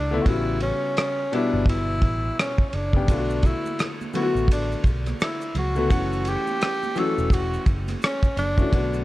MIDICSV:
0, 0, Header, 1, 5, 480
1, 0, Start_track
1, 0, Tempo, 705882
1, 175, Time_signature, 4, 2, 24, 8
1, 6149, End_track
2, 0, Start_track
2, 0, Title_t, "Tenor saxophone"
2, 0, Program_c, 0, 66
2, 0, Note_on_c, 0, 62, 86
2, 149, Note_on_c, 0, 66, 68
2, 160, Note_off_c, 0, 62, 0
2, 189, Note_on_c, 0, 64, 93
2, 199, Note_off_c, 0, 66, 0
2, 422, Note_off_c, 0, 64, 0
2, 425, Note_on_c, 0, 61, 94
2, 912, Note_on_c, 0, 62, 81
2, 922, Note_off_c, 0, 61, 0
2, 1143, Note_off_c, 0, 62, 0
2, 1151, Note_on_c, 0, 64, 87
2, 1596, Note_off_c, 0, 64, 0
2, 1627, Note_on_c, 0, 61, 78
2, 1809, Note_off_c, 0, 61, 0
2, 1830, Note_on_c, 0, 61, 62
2, 1872, Note_on_c, 0, 62, 83
2, 1883, Note_off_c, 0, 61, 0
2, 2352, Note_on_c, 0, 64, 87
2, 2362, Note_off_c, 0, 62, 0
2, 2651, Note_off_c, 0, 64, 0
2, 2831, Note_on_c, 0, 66, 84
2, 3047, Note_off_c, 0, 66, 0
2, 3076, Note_on_c, 0, 62, 74
2, 3290, Note_off_c, 0, 62, 0
2, 3552, Note_on_c, 0, 64, 68
2, 3767, Note_off_c, 0, 64, 0
2, 3797, Note_on_c, 0, 66, 91
2, 4274, Note_on_c, 0, 67, 99
2, 4285, Note_off_c, 0, 66, 0
2, 4753, Note_on_c, 0, 69, 96
2, 4764, Note_off_c, 0, 67, 0
2, 4987, Note_on_c, 0, 66, 84
2, 4998, Note_off_c, 0, 69, 0
2, 5221, Note_off_c, 0, 66, 0
2, 5472, Note_on_c, 0, 61, 83
2, 5687, Note_off_c, 0, 61, 0
2, 5703, Note_on_c, 0, 62, 94
2, 6149, Note_off_c, 0, 62, 0
2, 6149, End_track
3, 0, Start_track
3, 0, Title_t, "Upright piano"
3, 0, Program_c, 1, 0
3, 74, Note_on_c, 1, 50, 69
3, 81, Note_on_c, 1, 57, 61
3, 85, Note_on_c, 1, 59, 59
3, 91, Note_on_c, 1, 64, 77
3, 161, Note_off_c, 1, 50, 0
3, 165, Note_off_c, 1, 57, 0
3, 167, Note_off_c, 1, 59, 0
3, 170, Note_off_c, 1, 64, 0
3, 172, Note_on_c, 1, 49, 66
3, 178, Note_on_c, 1, 55, 62
3, 183, Note_on_c, 1, 59, 63
3, 188, Note_on_c, 1, 66, 77
3, 827, Note_off_c, 1, 49, 0
3, 830, Note_off_c, 1, 55, 0
3, 833, Note_off_c, 1, 59, 0
3, 835, Note_off_c, 1, 66, 0
3, 897, Note_on_c, 1, 47, 70
3, 903, Note_on_c, 1, 55, 65
3, 910, Note_on_c, 1, 59, 65
3, 914, Note_on_c, 1, 64, 74
3, 1767, Note_off_c, 1, 47, 0
3, 1770, Note_off_c, 1, 55, 0
3, 1774, Note_off_c, 1, 59, 0
3, 1776, Note_off_c, 1, 64, 0
3, 1998, Note_on_c, 1, 49, 67
3, 2007, Note_on_c, 1, 55, 61
3, 2011, Note_on_c, 1, 59, 61
3, 2016, Note_on_c, 1, 67, 75
3, 2084, Note_off_c, 1, 49, 0
3, 2088, Note_off_c, 1, 55, 0
3, 2090, Note_off_c, 1, 59, 0
3, 2092, Note_off_c, 1, 67, 0
3, 2099, Note_on_c, 1, 50, 65
3, 2102, Note_on_c, 1, 57, 61
3, 2110, Note_on_c, 1, 59, 58
3, 2117, Note_on_c, 1, 65, 61
3, 2157, Note_on_c, 1, 66, 72
3, 2159, Note_off_c, 1, 65, 0
3, 2751, Note_off_c, 1, 50, 0
3, 2752, Note_off_c, 1, 57, 0
3, 2756, Note_off_c, 1, 59, 0
3, 2780, Note_off_c, 1, 66, 0
3, 2814, Note_on_c, 1, 50, 69
3, 2820, Note_on_c, 1, 57, 64
3, 2827, Note_on_c, 1, 59, 64
3, 2831, Note_on_c, 1, 64, 59
3, 2876, Note_off_c, 1, 64, 0
3, 2877, Note_on_c, 1, 66, 79
3, 3686, Note_off_c, 1, 50, 0
3, 3689, Note_off_c, 1, 57, 0
3, 3693, Note_off_c, 1, 59, 0
3, 3718, Note_off_c, 1, 66, 0
3, 3912, Note_on_c, 1, 50, 66
3, 3919, Note_on_c, 1, 57, 60
3, 3924, Note_on_c, 1, 59, 60
3, 3929, Note_on_c, 1, 66, 75
3, 3999, Note_off_c, 1, 57, 0
3, 4000, Note_off_c, 1, 50, 0
3, 4004, Note_on_c, 1, 52, 68
3, 4006, Note_off_c, 1, 59, 0
3, 4009, Note_off_c, 1, 66, 0
3, 4010, Note_on_c, 1, 57, 64
3, 4016, Note_on_c, 1, 61, 60
3, 4022, Note_on_c, 1, 78, 72
3, 4663, Note_off_c, 1, 52, 0
3, 4666, Note_off_c, 1, 57, 0
3, 4669, Note_off_c, 1, 61, 0
3, 4672, Note_off_c, 1, 78, 0
3, 4729, Note_on_c, 1, 52, 69
3, 4733, Note_on_c, 1, 57, 65
3, 4741, Note_on_c, 1, 61, 64
3, 4743, Note_on_c, 1, 66, 78
3, 5604, Note_off_c, 1, 52, 0
3, 5606, Note_off_c, 1, 57, 0
3, 5610, Note_off_c, 1, 61, 0
3, 5611, Note_off_c, 1, 66, 0
3, 5833, Note_on_c, 1, 52, 67
3, 5839, Note_on_c, 1, 57, 68
3, 5844, Note_on_c, 1, 61, 67
3, 5851, Note_on_c, 1, 66, 76
3, 5921, Note_off_c, 1, 52, 0
3, 5924, Note_off_c, 1, 57, 0
3, 5926, Note_off_c, 1, 61, 0
3, 5928, Note_on_c, 1, 50, 66
3, 5930, Note_off_c, 1, 66, 0
3, 5934, Note_on_c, 1, 57, 63
3, 5942, Note_on_c, 1, 59, 64
3, 5946, Note_on_c, 1, 66, 71
3, 6149, Note_off_c, 1, 50, 0
3, 6149, Note_off_c, 1, 57, 0
3, 6149, Note_off_c, 1, 59, 0
3, 6149, Note_off_c, 1, 66, 0
3, 6149, End_track
4, 0, Start_track
4, 0, Title_t, "Fretless electric bass"
4, 0, Program_c, 2, 35
4, 0, Note_on_c, 2, 37, 82
4, 124, Note_off_c, 2, 37, 0
4, 177, Note_on_c, 2, 33, 93
4, 478, Note_off_c, 2, 33, 0
4, 1042, Note_on_c, 2, 31, 78
4, 1373, Note_off_c, 2, 31, 0
4, 1373, Note_on_c, 2, 33, 77
4, 1562, Note_off_c, 2, 33, 0
4, 1859, Note_on_c, 2, 30, 75
4, 2098, Note_off_c, 2, 30, 0
4, 2098, Note_on_c, 2, 35, 99
4, 2398, Note_off_c, 2, 35, 0
4, 2958, Note_on_c, 2, 33, 77
4, 3222, Note_off_c, 2, 33, 0
4, 3292, Note_on_c, 2, 35, 82
4, 3481, Note_off_c, 2, 35, 0
4, 3773, Note_on_c, 2, 37, 78
4, 4017, Note_on_c, 2, 30, 81
4, 4027, Note_off_c, 2, 37, 0
4, 4317, Note_off_c, 2, 30, 0
4, 4882, Note_on_c, 2, 28, 78
4, 5144, Note_off_c, 2, 28, 0
4, 5212, Note_on_c, 2, 30, 75
4, 5402, Note_off_c, 2, 30, 0
4, 5690, Note_on_c, 2, 30, 89
4, 5880, Note_off_c, 2, 30, 0
4, 5936, Note_on_c, 2, 35, 85
4, 6149, Note_off_c, 2, 35, 0
4, 6149, End_track
5, 0, Start_track
5, 0, Title_t, "Drums"
5, 176, Note_on_c, 9, 36, 102
5, 176, Note_on_c, 9, 51, 76
5, 244, Note_off_c, 9, 36, 0
5, 244, Note_off_c, 9, 51, 0
5, 410, Note_on_c, 9, 51, 58
5, 478, Note_off_c, 9, 51, 0
5, 658, Note_on_c, 9, 44, 45
5, 658, Note_on_c, 9, 51, 64
5, 667, Note_on_c, 9, 37, 97
5, 726, Note_off_c, 9, 44, 0
5, 726, Note_off_c, 9, 51, 0
5, 735, Note_off_c, 9, 37, 0
5, 903, Note_on_c, 9, 51, 60
5, 971, Note_off_c, 9, 51, 0
5, 1127, Note_on_c, 9, 36, 91
5, 1150, Note_on_c, 9, 51, 76
5, 1195, Note_off_c, 9, 36, 0
5, 1218, Note_off_c, 9, 51, 0
5, 1371, Note_on_c, 9, 51, 49
5, 1372, Note_on_c, 9, 36, 83
5, 1439, Note_off_c, 9, 51, 0
5, 1440, Note_off_c, 9, 36, 0
5, 1628, Note_on_c, 9, 37, 109
5, 1628, Note_on_c, 9, 44, 47
5, 1628, Note_on_c, 9, 51, 68
5, 1696, Note_off_c, 9, 37, 0
5, 1696, Note_off_c, 9, 44, 0
5, 1696, Note_off_c, 9, 51, 0
5, 1757, Note_on_c, 9, 36, 93
5, 1825, Note_off_c, 9, 36, 0
5, 1854, Note_on_c, 9, 51, 55
5, 1922, Note_off_c, 9, 51, 0
5, 1994, Note_on_c, 9, 36, 84
5, 2062, Note_off_c, 9, 36, 0
5, 2096, Note_on_c, 9, 36, 109
5, 2096, Note_on_c, 9, 51, 81
5, 2101, Note_on_c, 9, 82, 63
5, 2164, Note_off_c, 9, 36, 0
5, 2164, Note_off_c, 9, 51, 0
5, 2169, Note_off_c, 9, 82, 0
5, 2246, Note_on_c, 9, 82, 45
5, 2314, Note_off_c, 9, 82, 0
5, 2329, Note_on_c, 9, 51, 60
5, 2333, Note_on_c, 9, 36, 82
5, 2349, Note_on_c, 9, 82, 40
5, 2397, Note_off_c, 9, 51, 0
5, 2401, Note_off_c, 9, 36, 0
5, 2417, Note_off_c, 9, 82, 0
5, 2488, Note_on_c, 9, 63, 40
5, 2488, Note_on_c, 9, 82, 41
5, 2556, Note_off_c, 9, 63, 0
5, 2556, Note_off_c, 9, 82, 0
5, 2577, Note_on_c, 9, 44, 46
5, 2577, Note_on_c, 9, 51, 62
5, 2584, Note_on_c, 9, 82, 54
5, 2586, Note_on_c, 9, 37, 93
5, 2645, Note_off_c, 9, 44, 0
5, 2645, Note_off_c, 9, 51, 0
5, 2652, Note_off_c, 9, 82, 0
5, 2654, Note_off_c, 9, 37, 0
5, 2729, Note_on_c, 9, 63, 51
5, 2729, Note_on_c, 9, 82, 33
5, 2797, Note_off_c, 9, 63, 0
5, 2797, Note_off_c, 9, 82, 0
5, 2812, Note_on_c, 9, 64, 62
5, 2812, Note_on_c, 9, 82, 44
5, 2822, Note_on_c, 9, 51, 58
5, 2880, Note_off_c, 9, 64, 0
5, 2880, Note_off_c, 9, 82, 0
5, 2890, Note_off_c, 9, 51, 0
5, 2967, Note_on_c, 9, 82, 38
5, 3035, Note_off_c, 9, 82, 0
5, 3046, Note_on_c, 9, 36, 89
5, 3068, Note_on_c, 9, 82, 60
5, 3070, Note_on_c, 9, 51, 72
5, 3114, Note_off_c, 9, 36, 0
5, 3136, Note_off_c, 9, 82, 0
5, 3138, Note_off_c, 9, 51, 0
5, 3209, Note_on_c, 9, 82, 39
5, 3277, Note_off_c, 9, 82, 0
5, 3289, Note_on_c, 9, 51, 48
5, 3292, Note_on_c, 9, 36, 89
5, 3304, Note_on_c, 9, 82, 45
5, 3357, Note_off_c, 9, 51, 0
5, 3360, Note_off_c, 9, 36, 0
5, 3372, Note_off_c, 9, 82, 0
5, 3442, Note_on_c, 9, 51, 42
5, 3443, Note_on_c, 9, 63, 55
5, 3443, Note_on_c, 9, 82, 39
5, 3449, Note_on_c, 9, 37, 30
5, 3510, Note_off_c, 9, 51, 0
5, 3511, Note_off_c, 9, 63, 0
5, 3511, Note_off_c, 9, 82, 0
5, 3517, Note_off_c, 9, 37, 0
5, 3536, Note_on_c, 9, 82, 47
5, 3549, Note_on_c, 9, 37, 110
5, 3549, Note_on_c, 9, 44, 49
5, 3549, Note_on_c, 9, 51, 74
5, 3604, Note_off_c, 9, 82, 0
5, 3617, Note_off_c, 9, 37, 0
5, 3617, Note_off_c, 9, 44, 0
5, 3617, Note_off_c, 9, 51, 0
5, 3681, Note_on_c, 9, 82, 43
5, 3749, Note_off_c, 9, 82, 0
5, 3774, Note_on_c, 9, 51, 60
5, 3776, Note_on_c, 9, 63, 41
5, 3776, Note_on_c, 9, 64, 59
5, 3776, Note_on_c, 9, 82, 42
5, 3842, Note_off_c, 9, 51, 0
5, 3844, Note_off_c, 9, 63, 0
5, 3844, Note_off_c, 9, 64, 0
5, 3844, Note_off_c, 9, 82, 0
5, 3915, Note_on_c, 9, 82, 45
5, 3983, Note_off_c, 9, 82, 0
5, 4015, Note_on_c, 9, 36, 106
5, 4017, Note_on_c, 9, 51, 81
5, 4019, Note_on_c, 9, 82, 64
5, 4083, Note_off_c, 9, 36, 0
5, 4085, Note_off_c, 9, 51, 0
5, 4087, Note_off_c, 9, 82, 0
5, 4164, Note_on_c, 9, 82, 43
5, 4232, Note_off_c, 9, 82, 0
5, 4249, Note_on_c, 9, 51, 61
5, 4260, Note_on_c, 9, 82, 44
5, 4317, Note_off_c, 9, 51, 0
5, 4328, Note_off_c, 9, 82, 0
5, 4401, Note_on_c, 9, 63, 42
5, 4401, Note_on_c, 9, 82, 45
5, 4469, Note_off_c, 9, 63, 0
5, 4469, Note_off_c, 9, 82, 0
5, 4497, Note_on_c, 9, 44, 44
5, 4497, Note_on_c, 9, 51, 66
5, 4498, Note_on_c, 9, 82, 57
5, 4506, Note_on_c, 9, 37, 97
5, 4565, Note_off_c, 9, 44, 0
5, 4565, Note_off_c, 9, 51, 0
5, 4566, Note_off_c, 9, 82, 0
5, 4574, Note_off_c, 9, 37, 0
5, 4645, Note_on_c, 9, 63, 52
5, 4645, Note_on_c, 9, 82, 34
5, 4713, Note_off_c, 9, 63, 0
5, 4713, Note_off_c, 9, 82, 0
5, 4732, Note_on_c, 9, 64, 60
5, 4732, Note_on_c, 9, 82, 45
5, 4742, Note_on_c, 9, 51, 57
5, 4800, Note_off_c, 9, 64, 0
5, 4800, Note_off_c, 9, 82, 0
5, 4810, Note_off_c, 9, 51, 0
5, 4883, Note_on_c, 9, 82, 43
5, 4951, Note_off_c, 9, 82, 0
5, 4965, Note_on_c, 9, 36, 92
5, 4979, Note_on_c, 9, 82, 57
5, 4988, Note_on_c, 9, 51, 76
5, 5033, Note_off_c, 9, 36, 0
5, 5047, Note_off_c, 9, 82, 0
5, 5056, Note_off_c, 9, 51, 0
5, 5123, Note_on_c, 9, 82, 39
5, 5191, Note_off_c, 9, 82, 0
5, 5209, Note_on_c, 9, 51, 50
5, 5211, Note_on_c, 9, 36, 90
5, 5212, Note_on_c, 9, 82, 41
5, 5277, Note_off_c, 9, 51, 0
5, 5279, Note_off_c, 9, 36, 0
5, 5280, Note_off_c, 9, 82, 0
5, 5357, Note_on_c, 9, 63, 51
5, 5357, Note_on_c, 9, 82, 40
5, 5361, Note_on_c, 9, 51, 44
5, 5368, Note_on_c, 9, 37, 29
5, 5425, Note_off_c, 9, 63, 0
5, 5425, Note_off_c, 9, 82, 0
5, 5429, Note_off_c, 9, 51, 0
5, 5436, Note_off_c, 9, 37, 0
5, 5453, Note_on_c, 9, 82, 49
5, 5467, Note_on_c, 9, 37, 111
5, 5467, Note_on_c, 9, 44, 50
5, 5467, Note_on_c, 9, 51, 72
5, 5521, Note_off_c, 9, 82, 0
5, 5535, Note_off_c, 9, 37, 0
5, 5535, Note_off_c, 9, 44, 0
5, 5535, Note_off_c, 9, 51, 0
5, 5594, Note_on_c, 9, 36, 92
5, 5599, Note_on_c, 9, 82, 43
5, 5662, Note_off_c, 9, 36, 0
5, 5667, Note_off_c, 9, 82, 0
5, 5692, Note_on_c, 9, 51, 58
5, 5694, Note_on_c, 9, 63, 44
5, 5694, Note_on_c, 9, 64, 58
5, 5694, Note_on_c, 9, 82, 41
5, 5760, Note_off_c, 9, 51, 0
5, 5762, Note_off_c, 9, 63, 0
5, 5762, Note_off_c, 9, 64, 0
5, 5762, Note_off_c, 9, 82, 0
5, 5832, Note_on_c, 9, 36, 85
5, 5833, Note_on_c, 9, 82, 45
5, 5900, Note_off_c, 9, 36, 0
5, 5901, Note_off_c, 9, 82, 0
5, 5934, Note_on_c, 9, 36, 108
5, 5935, Note_on_c, 9, 82, 58
5, 5936, Note_on_c, 9, 51, 77
5, 6002, Note_off_c, 9, 36, 0
5, 6003, Note_off_c, 9, 82, 0
5, 6004, Note_off_c, 9, 51, 0
5, 6076, Note_on_c, 9, 82, 44
5, 6144, Note_off_c, 9, 82, 0
5, 6149, End_track
0, 0, End_of_file